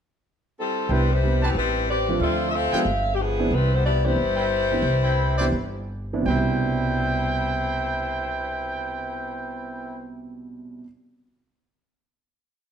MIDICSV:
0, 0, Header, 1, 6, 480
1, 0, Start_track
1, 0, Key_signature, 0, "major"
1, 0, Tempo, 325910
1, 1326, Time_signature, 4, 2, 24, 8
1, 6125, Tempo, 342466
1, 8045, Tempo, 379987
1, 17123, End_track
2, 0, Start_track
2, 0, Title_t, "Trumpet section"
2, 0, Program_c, 0, 61
2, 1308, Note_on_c, 0, 71, 60
2, 1309, Note_on_c, 0, 72, 63
2, 1311, Note_on_c, 0, 64, 69
2, 1312, Note_on_c, 0, 79, 76
2, 1517, Note_off_c, 0, 71, 0
2, 1518, Note_off_c, 0, 72, 0
2, 1519, Note_off_c, 0, 64, 0
2, 1520, Note_off_c, 0, 79, 0
2, 2097, Note_on_c, 0, 67, 80
2, 2100, Note_on_c, 0, 72, 77
2, 2100, Note_on_c, 0, 81, 96
2, 2102, Note_on_c, 0, 71, 79
2, 2221, Note_off_c, 0, 67, 0
2, 2223, Note_off_c, 0, 72, 0
2, 2223, Note_off_c, 0, 81, 0
2, 2224, Note_off_c, 0, 71, 0
2, 4018, Note_on_c, 0, 79, 104
2, 4019, Note_on_c, 0, 71, 83
2, 4021, Note_on_c, 0, 68, 85
2, 4024, Note_on_c, 0, 65, 88
2, 4142, Note_off_c, 0, 71, 0
2, 4142, Note_off_c, 0, 79, 0
2, 4144, Note_off_c, 0, 68, 0
2, 4145, Note_off_c, 0, 65, 0
2, 6407, Note_on_c, 0, 72, 74
2, 6408, Note_on_c, 0, 79, 91
2, 6409, Note_on_c, 0, 64, 77
2, 6409, Note_on_c, 0, 71, 79
2, 6529, Note_off_c, 0, 72, 0
2, 6529, Note_off_c, 0, 79, 0
2, 6530, Note_off_c, 0, 71, 0
2, 6531, Note_off_c, 0, 64, 0
2, 7350, Note_on_c, 0, 64, 93
2, 7352, Note_on_c, 0, 60, 82
2, 7354, Note_on_c, 0, 83, 81
2, 7355, Note_on_c, 0, 79, 98
2, 7819, Note_off_c, 0, 64, 0
2, 7820, Note_off_c, 0, 60, 0
2, 7821, Note_off_c, 0, 79, 0
2, 7821, Note_off_c, 0, 83, 0
2, 7837, Note_on_c, 0, 71, 81
2, 7838, Note_on_c, 0, 74, 97
2, 7839, Note_on_c, 0, 72, 81
2, 7840, Note_on_c, 0, 64, 88
2, 7971, Note_off_c, 0, 71, 0
2, 7972, Note_off_c, 0, 74, 0
2, 7973, Note_off_c, 0, 64, 0
2, 7973, Note_off_c, 0, 72, 0
2, 8972, Note_on_c, 0, 79, 101
2, 8973, Note_on_c, 0, 72, 83
2, 8974, Note_on_c, 0, 64, 91
2, 8974, Note_on_c, 0, 71, 80
2, 13839, Note_off_c, 0, 72, 0
2, 13839, Note_off_c, 0, 79, 0
2, 13840, Note_off_c, 0, 64, 0
2, 13840, Note_off_c, 0, 71, 0
2, 17123, End_track
3, 0, Start_track
3, 0, Title_t, "Saxophone section"
3, 0, Program_c, 1, 65
3, 868, Note_on_c, 1, 60, 70
3, 868, Note_on_c, 1, 64, 68
3, 871, Note_on_c, 1, 55, 72
3, 872, Note_on_c, 1, 69, 84
3, 1304, Note_off_c, 1, 60, 0
3, 1304, Note_off_c, 1, 64, 0
3, 1305, Note_off_c, 1, 55, 0
3, 1306, Note_off_c, 1, 69, 0
3, 1347, Note_on_c, 1, 55, 84
3, 1348, Note_on_c, 1, 60, 77
3, 1350, Note_on_c, 1, 71, 95
3, 1351, Note_on_c, 1, 64, 78
3, 1627, Note_off_c, 1, 64, 0
3, 1627, Note_off_c, 1, 71, 0
3, 1636, Note_off_c, 1, 55, 0
3, 1637, Note_off_c, 1, 60, 0
3, 1645, Note_on_c, 1, 64, 75
3, 1645, Note_on_c, 1, 71, 82
3, 1658, Note_on_c, 1, 72, 87
3, 1659, Note_on_c, 1, 55, 77
3, 2115, Note_off_c, 1, 64, 0
3, 2115, Note_off_c, 1, 71, 0
3, 2122, Note_off_c, 1, 55, 0
3, 2122, Note_off_c, 1, 72, 0
3, 2122, Note_on_c, 1, 67, 82
3, 2123, Note_on_c, 1, 60, 71
3, 2126, Note_on_c, 1, 59, 72
3, 2128, Note_on_c, 1, 52, 66
3, 2289, Note_off_c, 1, 60, 0
3, 2293, Note_off_c, 1, 67, 0
3, 2295, Note_off_c, 1, 59, 0
3, 2296, Note_off_c, 1, 52, 0
3, 2306, Note_on_c, 1, 60, 77
3, 2306, Note_on_c, 1, 71, 88
3, 2311, Note_on_c, 1, 55, 84
3, 2311, Note_on_c, 1, 64, 80
3, 2742, Note_off_c, 1, 71, 0
3, 2743, Note_off_c, 1, 60, 0
3, 2745, Note_off_c, 1, 55, 0
3, 2745, Note_off_c, 1, 64, 0
3, 2793, Note_on_c, 1, 71, 80
3, 2794, Note_on_c, 1, 60, 77
3, 2796, Note_on_c, 1, 74, 96
3, 2800, Note_on_c, 1, 67, 79
3, 3226, Note_off_c, 1, 60, 0
3, 3226, Note_off_c, 1, 71, 0
3, 3228, Note_off_c, 1, 74, 0
3, 3230, Note_off_c, 1, 67, 0
3, 3257, Note_on_c, 1, 65, 87
3, 3257, Note_on_c, 1, 69, 94
3, 3263, Note_on_c, 1, 60, 89
3, 3267, Note_on_c, 1, 76, 99
3, 3625, Note_off_c, 1, 65, 0
3, 3625, Note_off_c, 1, 69, 0
3, 3629, Note_off_c, 1, 60, 0
3, 3631, Note_off_c, 1, 76, 0
3, 3678, Note_on_c, 1, 76, 79
3, 3730, Note_off_c, 1, 76, 0
3, 3740, Note_on_c, 1, 60, 89
3, 3741, Note_on_c, 1, 77, 106
3, 3748, Note_on_c, 1, 69, 82
3, 3748, Note_on_c, 1, 76, 85
3, 4212, Note_off_c, 1, 60, 0
3, 4216, Note_off_c, 1, 69, 0
3, 4614, Note_off_c, 1, 77, 0
3, 4617, Note_off_c, 1, 76, 0
3, 4630, Note_on_c, 1, 67, 68
3, 4695, Note_off_c, 1, 67, 0
3, 4717, Note_on_c, 1, 53, 70
3, 4720, Note_on_c, 1, 68, 86
3, 4725, Note_on_c, 1, 62, 71
3, 4728, Note_on_c, 1, 59, 72
3, 5179, Note_off_c, 1, 53, 0
3, 5181, Note_off_c, 1, 68, 0
3, 5183, Note_off_c, 1, 62, 0
3, 5185, Note_off_c, 1, 59, 0
3, 5211, Note_on_c, 1, 71, 94
3, 5217, Note_on_c, 1, 60, 82
3, 5220, Note_on_c, 1, 55, 80
3, 5223, Note_on_c, 1, 64, 82
3, 5487, Note_off_c, 1, 71, 0
3, 5488, Note_off_c, 1, 64, 0
3, 5490, Note_off_c, 1, 60, 0
3, 5491, Note_off_c, 1, 55, 0
3, 5506, Note_on_c, 1, 64, 74
3, 5507, Note_on_c, 1, 72, 88
3, 5509, Note_on_c, 1, 55, 74
3, 5510, Note_on_c, 1, 59, 75
3, 5656, Note_off_c, 1, 59, 0
3, 5657, Note_off_c, 1, 64, 0
3, 5665, Note_off_c, 1, 55, 0
3, 5665, Note_off_c, 1, 72, 0
3, 5674, Note_on_c, 1, 59, 76
3, 5675, Note_on_c, 1, 64, 80
3, 5679, Note_on_c, 1, 74, 92
3, 5682, Note_on_c, 1, 67, 77
3, 5940, Note_off_c, 1, 59, 0
3, 5941, Note_off_c, 1, 64, 0
3, 5943, Note_off_c, 1, 74, 0
3, 5945, Note_off_c, 1, 67, 0
3, 5958, Note_on_c, 1, 71, 83
3, 5958, Note_on_c, 1, 72, 101
3, 5961, Note_on_c, 1, 55, 89
3, 5963, Note_on_c, 1, 64, 88
3, 8511, Note_off_c, 1, 71, 0
3, 8511, Note_off_c, 1, 72, 0
3, 8512, Note_off_c, 1, 55, 0
3, 8513, Note_off_c, 1, 64, 0
3, 17123, End_track
4, 0, Start_track
4, 0, Title_t, "Grand piano"
4, 0, Program_c, 2, 0
4, 1332, Note_on_c, 2, 55, 54
4, 1334, Note_on_c, 2, 59, 50
4, 1337, Note_on_c, 2, 60, 50
4, 1341, Note_on_c, 2, 62, 51
4, 1342, Note_on_c, 2, 64, 58
4, 1599, Note_off_c, 2, 55, 0
4, 1600, Note_off_c, 2, 59, 0
4, 1601, Note_off_c, 2, 60, 0
4, 1603, Note_off_c, 2, 62, 0
4, 1603, Note_off_c, 2, 64, 0
4, 1816, Note_on_c, 2, 55, 50
4, 1820, Note_on_c, 2, 60, 45
4, 1821, Note_on_c, 2, 59, 44
4, 1827, Note_on_c, 2, 67, 50
4, 1831, Note_on_c, 2, 62, 45
4, 2081, Note_off_c, 2, 55, 0
4, 2083, Note_off_c, 2, 59, 0
4, 2083, Note_off_c, 2, 60, 0
4, 2086, Note_off_c, 2, 67, 0
4, 2088, Note_off_c, 2, 62, 0
4, 3069, Note_on_c, 2, 53, 60
4, 3072, Note_on_c, 2, 57, 59
4, 3076, Note_on_c, 2, 60, 55
4, 3079, Note_on_c, 2, 65, 67
4, 3081, Note_on_c, 2, 62, 56
4, 3690, Note_off_c, 2, 53, 0
4, 3692, Note_off_c, 2, 57, 0
4, 3694, Note_off_c, 2, 60, 0
4, 3695, Note_off_c, 2, 65, 0
4, 3696, Note_off_c, 2, 62, 0
4, 4039, Note_on_c, 2, 53, 61
4, 4040, Note_on_c, 2, 56, 59
4, 4045, Note_on_c, 2, 62, 57
4, 4047, Note_on_c, 2, 59, 55
4, 4052, Note_on_c, 2, 67, 66
4, 4193, Note_off_c, 2, 53, 0
4, 4194, Note_off_c, 2, 56, 0
4, 4196, Note_off_c, 2, 62, 0
4, 4197, Note_off_c, 2, 59, 0
4, 4200, Note_off_c, 2, 67, 0
4, 5000, Note_on_c, 2, 52, 69
4, 5000, Note_on_c, 2, 60, 62
4, 5004, Note_on_c, 2, 59, 60
4, 5007, Note_on_c, 2, 62, 62
4, 5009, Note_on_c, 2, 64, 72
4, 5153, Note_off_c, 2, 52, 0
4, 5153, Note_off_c, 2, 60, 0
4, 5155, Note_off_c, 2, 59, 0
4, 5156, Note_off_c, 2, 62, 0
4, 5157, Note_off_c, 2, 64, 0
4, 5960, Note_on_c, 2, 52, 59
4, 5966, Note_on_c, 2, 60, 54
4, 5967, Note_on_c, 2, 59, 53
4, 5975, Note_on_c, 2, 62, 56
4, 5982, Note_on_c, 2, 67, 64
4, 6116, Note_off_c, 2, 52, 0
4, 6119, Note_off_c, 2, 59, 0
4, 6119, Note_off_c, 2, 60, 0
4, 6123, Note_off_c, 2, 62, 0
4, 6126, Note_off_c, 2, 67, 0
4, 6899, Note_on_c, 2, 59, 58
4, 6900, Note_on_c, 2, 52, 60
4, 6903, Note_on_c, 2, 60, 56
4, 6903, Note_on_c, 2, 62, 57
4, 6907, Note_on_c, 2, 67, 68
4, 7054, Note_off_c, 2, 59, 0
4, 7055, Note_off_c, 2, 52, 0
4, 7056, Note_off_c, 2, 60, 0
4, 7056, Note_off_c, 2, 62, 0
4, 7058, Note_off_c, 2, 67, 0
4, 7864, Note_on_c, 2, 52, 58
4, 7870, Note_on_c, 2, 59, 57
4, 7871, Note_on_c, 2, 60, 55
4, 7877, Note_on_c, 2, 62, 55
4, 7878, Note_on_c, 2, 67, 72
4, 8030, Note_off_c, 2, 52, 0
4, 8033, Note_off_c, 2, 59, 0
4, 8033, Note_off_c, 2, 60, 0
4, 8036, Note_off_c, 2, 62, 0
4, 8037, Note_off_c, 2, 67, 0
4, 8806, Note_on_c, 2, 52, 64
4, 8810, Note_on_c, 2, 59, 62
4, 8815, Note_on_c, 2, 60, 60
4, 8817, Note_on_c, 2, 64, 67
4, 8818, Note_on_c, 2, 62, 60
4, 8918, Note_on_c, 2, 48, 61
4, 8957, Note_on_c, 2, 55, 60
4, 8964, Note_off_c, 2, 52, 0
4, 8966, Note_off_c, 2, 59, 0
4, 8968, Note_off_c, 2, 60, 0
4, 8969, Note_off_c, 2, 64, 0
4, 8970, Note_off_c, 2, 62, 0
4, 8994, Note_on_c, 2, 47, 60
4, 9032, Note_on_c, 2, 62, 56
4, 9073, Note_on_c, 2, 64, 70
4, 14696, Note_off_c, 2, 48, 0
4, 14716, Note_off_c, 2, 55, 0
4, 14734, Note_off_c, 2, 47, 0
4, 14753, Note_off_c, 2, 62, 0
4, 14774, Note_off_c, 2, 64, 0
4, 17123, End_track
5, 0, Start_track
5, 0, Title_t, "Upright bass"
5, 0, Program_c, 3, 32
5, 1313, Note_on_c, 3, 36, 82
5, 2231, Note_off_c, 3, 36, 0
5, 2276, Note_on_c, 3, 33, 80
5, 3192, Note_off_c, 3, 33, 0
5, 3236, Note_on_c, 3, 38, 86
5, 3965, Note_off_c, 3, 38, 0
5, 4202, Note_on_c, 3, 31, 79
5, 5113, Note_off_c, 3, 31, 0
5, 5166, Note_on_c, 3, 36, 82
5, 6080, Note_off_c, 3, 36, 0
5, 6129, Note_on_c, 3, 31, 79
5, 7021, Note_off_c, 3, 31, 0
5, 7056, Note_on_c, 3, 36, 88
5, 7992, Note_off_c, 3, 36, 0
5, 8035, Note_on_c, 3, 31, 78
5, 8927, Note_off_c, 3, 31, 0
5, 8962, Note_on_c, 3, 36, 83
5, 14668, Note_off_c, 3, 36, 0
5, 17123, End_track
6, 0, Start_track
6, 0, Title_t, "Muted upright bass strokes"
6, 4021, Note_on_c, 9, 29, 41
6, 4168, Note_off_c, 9, 29, 0
6, 17123, End_track
0, 0, End_of_file